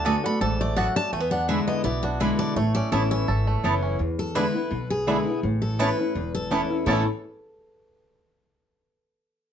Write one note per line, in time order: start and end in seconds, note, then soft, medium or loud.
0.00 0.15 D2 loud
0.00 0.21 A3 medium
0.00 0.23 D4 medium
0.04 0.23 D3 medium
0.04 0.24 A3 medium
0.04 0.15 B3 medium
0.04 0.24 B3 medium
0.04 0.15 F#4 loud
0.04 0.23 F#4 medium
0.04 0.40 A4 medium
0.04 0.15 D5 medium
0.04 0.24 G#5 medium
0.04 0.15 A5 loud
0.24 0.41 B3 soft
0.24 0.73 D4 medium
0.24 0.40 F#4 medium
0.24 0.41 B5 loud
0.41 0.87 A1 medium
0.41 0.75 G#2 loud
0.41 0.92 A4 medium
0.41 0.60 A5 loud
0.61 1.10 A3 medium
0.61 0.77 D5 medium
0.76 1.11 F#2 medium
0.76 0.86 B3 medium
0.76 0.86 F#4 medium
0.76 1.13 F#4 medium
0.76 0.87 D5 loud
0.76 0.95 F#5 loud
0.76 0.87 A5 medium
0.96 1.13 D4 medium
0.96 1.12 A5 loud
1.13 1.81 E2 medium
1.13 1.58 E2 medium
1.13 1.20 A3 medium
1.13 1.31 G#5 medium
1.20 1.49 B3 medium
1.31 1.81 D4 medium
1.31 1.48 F#5 loud
1.48 1.82 D3 medium
1.48 1.83 G#3 medium
1.48 1.83 B3 medium
1.48 1.58 D4 loud
1.48 1.84 E4 medium
1.48 1.83 E4 medium
1.48 1.58 G#4 loud
1.48 1.67 E5 medium
1.48 1.58 E5 loud
1.48 1.59 B5 loud
1.68 2.56 B3 medium
1.68 1.83 D#5 medium
1.84 2.30 B1 medium
1.84 2.53 B2 medium
1.84 2.20 E4 medium
1.84 2.03 D5 medium
2.03 2.39 D4 medium
2.03 2.19 F#4 medium
2.20 2.54 D3 medium
2.20 2.55 G#3 medium
2.20 2.55 B3 medium
2.20 2.30 D4 medium
2.20 3.61 E4 medium
2.20 2.55 E4 loud
2.20 2.30 G#4 loud
2.20 2.39 B4 medium
2.20 2.30 E5 medium
2.20 2.30 B5 loud
2.39 2.56 D4 medium
2.39 2.55 D5 loud
2.56 2.79 A1 medium
2.56 3.25 A2 medium
2.56 3.08 A3 medium
2.56 2.74 C#5 medium
2.75 3.10 C#4 medium
2.75 2.91 D5 loud
2.92 3.22 A1 medium
2.92 3.26 E3 medium
2.92 3.02 B3 medium
2.92 3.26 B3 medium
2.92 3.27 C#4 loud
2.92 3.02 E4 loud
2.92 3.27 E4 medium
2.92 3.27 A4 medium
2.92 3.02 C#5 loud
2.92 3.10 E5 medium
2.92 3.02 A5 loud
3.11 3.61 C#4 medium
3.11 3.87 E5 medium
3.28 3.59 G#1 medium
3.28 3.96 E2 medium
3.28 3.79 A4 medium
3.47 3.96 A3 medium
3.63 3.94 F#1 medium
3.63 3.98 E3 medium
3.63 3.74 B3 medium
3.63 3.98 B3 medium
3.63 3.98 C#4 medium
3.63 4.00 E4 medium
3.63 3.74 E4 medium
3.63 3.99 E4 medium
3.63 3.74 C#5 loud
3.63 3.74 A5 loud
3.83 3.99 C#4 medium
3.99 4.68 E2 medium
3.99 4.45 E2 medium
4.19 4.35 A4 medium
4.35 4.54 D3 medium
4.35 4.54 G#3 medium
4.35 4.44 B3 medium
4.35 4.54 B3 loud
4.35 4.45 D4 medium
4.35 4.44 D4 medium
4.35 4.44 E4 medium
4.35 4.53 E4 loud
4.35 4.45 G#4 medium
4.35 4.90 B4 medium
4.35 4.45 E5 loud
4.35 4.45 B5 medium
4.54 4.71 B3 soft
4.54 4.70 E4 medium
4.71 5.17 B1 medium
4.71 5.39 B2 medium
4.90 5.39 G#4 medium
5.07 5.26 D3 medium
5.07 5.26 G#3 medium
5.07 5.16 B3 medium
5.07 5.26 B3 medium
5.07 5.17 D4 medium
5.07 5.16 D4 medium
5.07 5.16 E4 medium
5.07 5.25 E4 medium
5.07 5.17 G#4 loud
5.07 5.17 E5 medium
5.07 5.17 B5 medium
5.26 5.43 B3 medium
5.26 5.42 E4 medium
5.43 5.89 A1 medium
5.43 6.12 A2 medium
5.62 5.80 A4 medium
5.79 5.98 E3 medium
5.79 5.88 A3 medium
5.79 5.89 B3 medium
5.79 5.98 B3 medium
5.79 5.88 C#4 medium
5.79 5.98 C#4 medium
5.79 5.89 E4 loud
5.79 5.96 E4 medium
5.79 5.88 E4 medium
5.79 6.34 B4 medium
5.79 5.89 C#5 medium
5.79 5.89 A5 loud
5.98 6.15 C#4 soft
5.98 6.14 E4 medium
6.15 6.61 E1 medium
6.15 6.84 E2 medium
6.35 6.76 A4 medium
6.50 6.69 E3 medium
6.50 6.60 A3 medium
6.50 6.69 B3 medium
6.50 6.61 B3 medium
6.50 6.70 C#4 medium
6.50 6.60 C#4 medium
6.50 6.61 E4 medium
6.50 6.69 E4 loud
6.50 6.60 E4 medium
6.50 6.61 C#5 loud
6.50 6.61 A5 loud
6.70 6.86 C#4 medium
6.70 6.86 E4 medium
6.86 7.05 A1 medium
6.86 7.02 A2 medium
6.86 7.02 E3 medium
6.86 7.05 A3 medium
6.86 7.02 B3 medium
6.86 7.03 C#4 medium
6.86 7.06 C#4 medium
6.86 7.02 E4 medium
6.86 7.03 E4 loud
6.86 7.04 A4 medium
6.86 7.03 C#5 medium
6.86 7.03 A5 loud
6.91 7.07 E4 medium
6.91 7.08 A4 medium